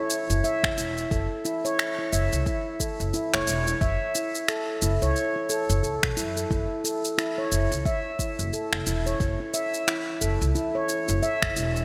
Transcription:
0.10 shaker medium
0.30 0.40 F#1 loud
0.30 0.43 E4 medium
0.30 shaker soft
0.44 0.63 E5 medium
0.44 shaker soft
0.64 0.73 F#1 medium
0.64 finger snap medium
0.64 kick loud
0.78 1.03 E1 medium
0.78 0.97 E4 medium
0.78 shaker medium
0.98 shaker soft
1.11 1.25 F#1 medium
1.11 1.30 A4 medium
1.11 kick loud
1.11 shaker soft
1.45 1.56 E4 medium
1.45 shaker medium
1.65 1.78 C#5 medium
1.65 shaker soft
1.79 finger snap medium
1.79 shaker soft
1.99 2.12 E4 medium
2.13 2.26 F#1 medium
2.13 2.31 E5 medium
2.13 shaker medium
2.33 2.42 C#2 loud
2.33 shaker soft
2.46 2.65 E4 medium
2.46 kick loud
2.46 shaker soft
2.80 2.99 A4 medium
2.80 kick medium
2.80 shaker medium
3.00 3.10 F#1 medium
3.00 shaker soft
3.14 3.25 E4 loud
3.14 shaker soft
3.34 3.43 F#1 medium
3.34 3.47 C#5 loud
3.34 finger snap medium
3.47 3.73 E1 medium
3.47 shaker medium
3.67 3.81 E4 medium
3.67 shaker soft
3.81 3.95 F#1 medium
3.81 4.00 E5 medium
3.81 kick loud
3.81 shaker soft
4.15 4.34 E4 medium
4.15 shaker medium
4.35 shaker soft
4.48 4.67 A4 medium
4.48 finger snap medium
4.48 shaker soft
4.82 4.96 F#1 medium
4.82 4.94 E4 medium
4.82 shaker medium
5.02 5.12 C#2 medium
5.02 5.15 C#5 medium
5.02 shaker soft
5.16 shaker soft
5.36 5.49 E4 medium
5.50 5.69 A4 medium
5.50 shaker medium
5.70 5.79 F#1 loud
5.70 shaker soft
5.83 5.97 C#2 medium
5.83 6.01 A4 medium
5.83 shaker soft
6.03 6.13 B1 medium
6.03 finger snap medium
6.03 kick loud
6.17 6.42 F#2 medium
6.17 6.36 E4 medium
6.17 shaker medium
6.37 6.49 A4 medium
6.37 shaker soft
6.50 6.64 F#1 medium
6.50 6.70 E4 medium
6.50 kick loud
6.50 shaker soft
6.84 7.03 A4 medium
6.84 shaker medium
7.05 shaker soft
7.18 7.29 E4 loud
7.18 finger snap medium
7.18 shaker soft
7.38 7.51 C#5 medium
7.52 7.66 F#1 medium
7.52 shaker medium
7.71 7.81 C#2 medium
7.71 7.85 E4 medium
7.71 shaker soft
7.85 8.05 E5 loud
7.85 kick loud
7.85 shaker soft
8.19 8.38 E4 medium
8.19 kick medium
8.19 shaker medium
8.39 8.49 F#1 loud
8.39 shaker soft
8.53 8.72 A4 medium
8.53 shaker soft
8.73 8.82 F#1 medium
8.73 finger snap medium
8.87 9.12 E1 medium
8.87 8.98 E4 medium
8.87 shaker medium
9.06 9.20 C#5 medium
9.06 shaker soft
9.20 9.34 F#1 medium
9.20 kick loud
9.20 shaker soft
9.40 9.53 E4 medium
9.54 9.73 E5 loud
9.54 shaker medium
9.74 shaker soft
9.88 10.07 E4 medium
9.88 finger snap medium
9.88 shaker soft
10.21 10.35 F#1 medium
10.21 10.40 A4 medium
10.21 shaker medium
10.41 10.51 C#2 loud
10.41 shaker soft
10.55 10.67 E4 loud
10.55 shaker soft
10.75 10.88 C#5 medium
10.89 shaker medium
11.08 11.19 F#1 medium
11.08 11.22 E4 medium
11.08 shaker soft
11.23 11.41 E5 loud
11.23 shaker soft
11.42 11.52 F#1 medium
11.42 finger snap medium
11.42 kick medium
11.56 11.82 E1 medium
11.56 11.75 E4 medium
11.56 shaker medium
11.76 shaker soft

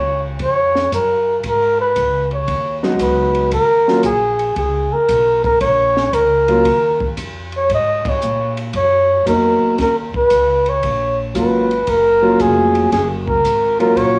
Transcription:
0.00 0.39 C#2 medium
0.00 0.24 C#5 medium
0.39 0.90 F2 medium
0.39 0.89 C#5 loud
0.39 kick soft
0.39 ride soft
0.75 snare soft
0.92 1.43 F#2 medium
0.92 1.41 A#4 medium
0.92 kick soft
0.92 hi-hat pedal medium
0.92 ride medium
1.44 1.94 G#2 medium
1.44 kick soft
1.44 ride medium
1.48 1.79 A#4 medium
1.80 2.28 B4 medium
1.96 2.47 C#2 medium
1.96 kick soft
1.96 hi-hat pedal medium
1.96 ride medium
2.31 2.81 C#5 medium
2.31 ride soft
2.48 2.98 D#2 medium
2.48 kick soft
2.48 ride medium
2.83 3.49 F#3 medium
2.83 3.49 G#3 medium
2.83 3.49 B3 medium
2.83 3.49 D#4 medium
2.83 snare soft
2.99 3.50 C#2 medium
2.99 3.50 B4 medium
2.99 kick soft
2.99 hi-hat pedal medium
2.99 ride medium
3.35 ride soft
3.51 4.03 D#2 medium
3.51 4.01 A#4 medium
3.51 kick soft
3.51 ride medium
3.88 4.03 F#3 medium
3.88 4.03 A#3 medium
3.88 4.03 C#4 medium
3.88 4.03 F4 medium
3.88 snare soft
4.03 4.55 A#1 medium
4.03 4.53 G#4 medium
4.03 kick soft
4.03 hi-hat pedal medium
4.03 ride medium
4.39 ride soft
4.56 4.89 C#2 medium
4.56 4.94 G#4 medium
4.56 kick soft
4.56 ride medium
4.93 5.44 A#4 medium
4.93 muted upright bass stroke soft
5.09 5.59 B1 medium
5.09 kick soft
5.09 hi-hat pedal medium
5.09 ride medium
5.44 5.60 A#4 medium
5.44 kick medium
5.44 ride soft
5.61 6.12 A#1 medium
5.61 6.15 C#5 loud
5.61 kick soft
5.61 ride medium
5.97 snare medium
6.13 6.64 C#2 medium
6.13 7.17 A#4 medium
6.13 kick soft
6.13 hi-hat pedal medium
6.13 ride medium
6.48 6.63 F#3 medium
6.48 6.64 A#3 medium
6.48 6.64 C#4 medium
6.48 6.64 F4 medium
6.48 ride soft
6.65 7.16 D#2 medium
6.65 kick soft
6.65 ride medium
7.01 kick soft
7.17 7.68 F2 medium
7.17 kick soft
7.17 hi-hat pedal soft
7.17 ride medium
7.52 ride soft
7.57 7.71 C#5 medium
7.69 8.03 G#2 medium
7.69 kick soft
7.69 ride medium
7.74 8.10 D#5 loud
8.05 8.59 C#5 medium
8.05 muted upright bass stroke soft
8.05 kick medium
8.05 ride medium
8.22 8.73 A#2 medium
8.22 hi-hat pedal soft
8.57 ride soft
8.73 9.25 F#2 medium
8.73 9.24 C#5 loud
8.73 kick soft
8.73 ride medium
9.26 9.60 F2 medium
9.26 9.78 F#3 medium
9.26 9.79 A#3 medium
9.26 9.79 B3 soft
9.26 9.79 D#4 medium
9.26 9.76 A#4 medium
9.26 kick soft
9.26 hi-hat pedal soft
9.26 ride medium
9.63 muted upright bass stroke soft
9.78 10.12 D#2 medium
9.78 9.97 A#4 medium
9.78 kick soft
9.78 snare soft
9.78 ride medium
10.14 10.70 B4 medium
10.14 muted upright bass stroke soft
10.14 kick soft
10.30 10.81 C#2 medium
10.30 kick soft
10.30 hi-hat pedal soft
10.30 ride medium
10.66 11.20 C#5 medium
10.66 ride soft
10.83 11.34 A#1 medium
10.83 kick soft
10.83 ride medium
11.34 11.86 G#1 medium
11.34 11.67 F#3 medium
11.34 11.67 A#3 soft
11.34 11.67 C#4 soft
11.34 11.67 F4 medium
11.34 kick soft
11.34 hi-hat pedal medium
11.34 ride medium
11.39 11.91 B4 medium
11.71 ride soft
11.87 12.38 F#1 medium
11.87 12.43 A#4 medium
11.87 kick soft
11.87 ride medium
12.22 12.88 F#3 medium
12.22 12.88 A#3 medium
12.22 12.88 C#4 medium
12.22 12.88 F4 medium
12.40 12.90 F1 medium
12.40 12.92 G#4 medium
12.40 kick soft
12.40 hi-hat pedal soft
12.40 ride medium
12.75 ride soft
12.92 13.42 F#1 medium
12.92 13.08 G#4 medium
12.92 kick soft
12.92 snare soft
12.92 ride medium
13.28 13.76 A#4 medium
13.28 kick soft
13.44 13.94 G#1 medium
13.44 kick soft
13.44 hi-hat pedal soft
13.44 ride medium
13.79 14.19 F#3 medium
13.79 14.19 A#3 medium
13.79 14.19 C#4 medium
13.79 14.19 F4 medium
13.79 13.98 A#4 medium
13.79 ride soft
13.96 14.19 A#1 medium
13.96 14.19 C#5 loud
13.96 kick soft
13.96 ride medium

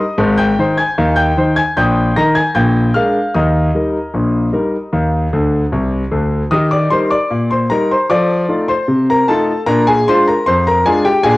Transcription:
0.00 0.35 D#5 medium
0.00 0.34 C6 medium
0.00 0.26 D#6 medium
0.18 0.51 G#1 medium
0.18 0.52 G#2 loud
0.38 0.75 G5 medium
0.38 0.75 G6 loud
0.59 0.80 D#3 medium
0.59 0.80 D#4 medium
0.59 0.81 C5 medium
0.78 1.15 G#5 medium
0.78 1.15 G#6 medium
0.98 1.31 D#2 medium
0.98 1.31 D#3 medium
1.16 1.53 G5 medium
1.16 1.54 G6 medium
1.37 1.59 D#3 medium
1.37 1.59 D#4 medium
1.37 1.59 C5 medium
1.56 1.75 G#5 medium
1.56 1.76 G#6 medium
1.77 2.10 A#1 medium
1.77 2.10 A#2 medium
1.77 2.13 G5 medium
1.77 2.14 D#6 medium
1.77 2.14 G6 loud
2.16 2.38 D#3 medium
2.16 2.39 D#4 medium
2.16 2.38 A#4 medium
2.16 2.34 A#5 medium
2.16 2.35 A#6 medium
2.35 2.54 G#5 medium
2.35 2.55 G#6 medium
2.55 2.89 A#1 medium
2.55 2.89 A#2 medium
2.55 2.92 G5 medium
2.55 2.92 G6 medium
2.94 3.17 G#3 medium
2.94 3.17 D4 soft
2.94 3.18 A#4 soft
2.94 3.32 F5 medium
2.94 3.32 F6 medium
3.34 3.68 D#2 medium
3.34 3.69 D#3 medium
3.34 5.70 D#5 medium
3.34 5.70 A#5 medium
3.34 5.69 D#6 medium
3.75 3.96 G3 soft
3.75 3.96 D#4 soft
3.75 3.97 A#4 soft
4.14 4.48 A#1 medium
4.14 4.48 A#2 medium
4.53 4.75 G3 soft
4.53 4.75 D#4 soft
4.53 4.76 A#4 medium
4.93 5.27 D#2 medium
4.93 5.27 D#3 medium
5.33 5.63 D2 medium
5.33 5.63 D3 medium
5.72 6.02 C2 medium
5.72 6.03 C3 medium
6.11 6.42 D2 medium
6.11 6.42 D3 medium
6.51 6.86 D#3 medium
6.51 6.75 G4 soft
6.51 6.71 D#5 medium
6.51 6.71 D#6 medium
6.71 6.91 D5 medium
6.71 6.91 D6 medium
6.90 7.13 G3 soft
6.90 7.13 D#4 soft
6.90 7.14 A#4 medium
6.90 7.10 C5 medium
6.90 7.11 C6 medium
7.10 7.48 D5 medium
7.10 7.43 D6 medium
7.30 7.64 A#2 medium
7.50 7.70 C5 medium
7.50 7.71 C6 medium
7.70 7.92 G3 medium
7.70 7.93 D#4 medium
7.70 7.90 A#4 medium
7.70 7.90 A#5 medium
7.91 8.10 C5 medium
7.91 8.11 C6 medium
8.10 8.44 F3 medium
8.10 8.33 A4 soft
8.10 8.66 D5 medium
8.10 8.57 D6 medium
8.49 8.71 A3 medium
8.49 8.71 D#4 soft
8.49 8.71 F4 medium
8.68 9.06 C5 medium
8.68 9.00 C6 medium
8.88 9.22 C3 medium
9.10 9.28 A#4 medium
9.10 9.29 A#5 medium
9.28 9.50 A3 medium
9.28 9.50 D#4 medium
9.28 9.51 F4 medium
9.28 9.65 A4 medium
9.28 9.60 A5 medium
9.66 10.00 A#2 medium
9.66 9.90 D4 medium
9.66 9.85 A#4 medium
9.66 9.87 A#5 loud
9.87 10.06 G#4 medium
9.87 10.07 G#5 loud
10.08 10.30 G#3 medium
10.08 10.30 D4 medium
10.08 10.30 F4 medium
10.08 10.26 C5 medium
10.08 10.27 C6 loud
10.27 10.46 A#4 medium
10.27 10.47 A#5 medium
10.46 10.80 F2 medium
10.46 10.65 C5 medium
10.46 10.66 C6 loud
10.67 10.85 A#4 medium
10.67 10.86 A#5 medium
10.86 11.08 G#3 medium
10.86 11.08 D4 medium
10.86 11.08 F4 medium
10.86 11.05 G#4 medium
10.86 11.05 G#5 loud
11.05 11.24 G4 medium
11.05 11.25 G5 medium
11.23 11.37 A#2 loud
11.23 11.37 D4 medium
11.23 11.37 G#4 medium
11.23 11.37 G#5 loud

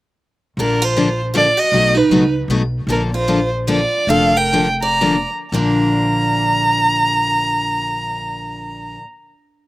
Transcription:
0.57 1.49 A#1 medium
0.57 0.79 D3 medium
0.57 0.80 F3 medium
0.57 0.80 A#3 medium
0.57 0.82 D4 medium
0.57 0.80 D4 medium
0.57 0.80 A4 medium
0.57 0.86 A#4 medium
0.82 1.20 F4 medium
0.82 1.22 C5 medium
0.96 1.08 D3 medium
0.96 1.08 F3 medium
0.96 1.08 A#3 medium
0.96 1.08 D4 medium
0.96 1.08 A4 medium
1.34 1.46 D3 medium
1.34 1.46 F3 medium
1.34 1.46 A#3 medium
1.34 1.46 D4 medium
1.34 1.57 F4 medium
1.34 1.46 A4 medium
1.34 1.61 D5 loud
1.57 1.94 F#4 medium
1.57 1.99 D#5 loud
1.72 2.03 B1 medium
1.72 1.94 B2 medium
1.72 1.94 F#3 medium
1.72 1.95 A3 medium
1.72 1.94 D#4 medium
1.72 1.94 F#4 medium
1.94 2.34 D#4 medium
1.94 2.35 B4 medium
2.09 2.43 C#2 medium
2.09 2.23 B2 medium
2.09 2.22 F#3 medium
2.09 2.23 A3 medium
2.09 2.23 D#4 medium
2.09 2.23 F#4 medium
2.48 2.81 B1 medium
2.48 2.61 B2 medium
2.48 2.61 F#3 medium
2.48 2.61 A3 medium
2.48 2.61 D#4 medium
2.48 2.61 F#4 medium
2.87 3.83 A#1 medium
2.87 3.09 D3 medium
2.87 3.09 F3 medium
2.87 3.10 A#3 medium
2.87 3.10 D4 medium
2.87 2.96 D4 medium
2.87 3.10 A4 medium
2.92 3.02 A#4 medium
3.14 3.50 F4 medium
3.14 3.50 C5 medium
3.28 3.39 D3 medium
3.28 3.39 F3 medium
3.28 3.39 A#3 medium
3.28 3.39 D4 medium
3.28 3.39 A4 medium
3.67 3.79 D3 medium
3.67 3.79 F3 medium
3.67 3.79 A#3 medium
3.67 3.79 D4 medium
3.67 4.06 F4 medium
3.67 3.79 A4 loud
3.67 4.10 D5 medium
4.07 5.23 F1 medium
4.07 4.32 D3 medium
4.07 4.32 F3 medium
4.07 4.32 A#3 medium
4.07 4.32 D4 medium
4.07 4.32 A4 medium
4.07 4.37 A4 medium
4.07 4.39 F5 loud
4.37 4.68 A#4 medium
4.37 4.68 G5 medium
4.53 4.66 D3 medium
4.53 4.66 F3 medium
4.53 4.66 A#3 medium
4.53 4.67 D4 medium
4.53 4.66 A4 medium
4.82 5.29 D5 medium
4.82 5.28 A#5 medium
5.01 5.15 D3 medium
5.01 5.15 F3 medium
5.01 5.15 A#3 medium
5.01 5.15 D4 medium
5.01 5.15 A4 medium
5.52 8.95 A#1 medium
5.52 9.02 A#2 medium
5.52 9.03 D3 medium
5.52 9.04 F3 medium
5.52 9.04 A#3 medium
5.52 8.97 D4 medium
5.52 9.05 D4 medium
5.52 8.96 A#5 medium

